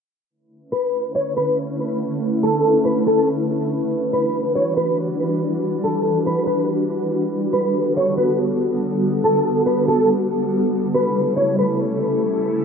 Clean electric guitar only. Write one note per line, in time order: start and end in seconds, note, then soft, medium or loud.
0.72 1.12 B4 medium
1.15 1.35 C#5 medium
1.37 1.57 B4 medium
2.43 2.83 A4 medium
2.85 3.05 B4 medium
3.07 3.27 A4 medium
4.13 4.53 B4 medium
4.55 4.76 C#5 medium
4.77 4.97 B4 medium
5.84 6.24 A4 medium
6.26 6.45 B4 medium
6.46 6.67 B4 medium
7.53 7.93 B4 medium
7.97 8.17 C#5 medium
8.17 8.38 B4 medium
9.24 9.64 A4 medium
9.66 9.86 B4 medium
9.88 10.08 A4 medium
10.94 11.34 B4 medium
11.36 11.57 C#5 medium
11.59 11.78 B4 medium